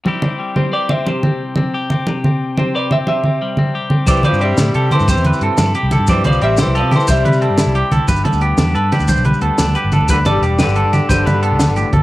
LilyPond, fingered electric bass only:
\new Staff \with { instrumentName = "Fingered electric bass" } { \clef bass \time 12/8 \key c \major \tempo 4. = 120 r1. | r1. | c,8 r16 g,8. a,8 c8 r16 g,8 e,8 r16 g,16 r16 g,8 r16 c,8 g,16~ | g,8 c,8 a,,8. c,8 c8 r16 c,8 c8. g,8 c,8 r16 c,16 r16 |
g,,8 r16 d,8. e,8 g,8 r16 d,8 b,,8 r16 d,16 r16 d,8 r16 g,,8 d,16~ | d,8 g,,8 e,,8. g,,8 g,8 r16 g,,8 g,8. d,8 g,,8 r16 g,,16 r16 | }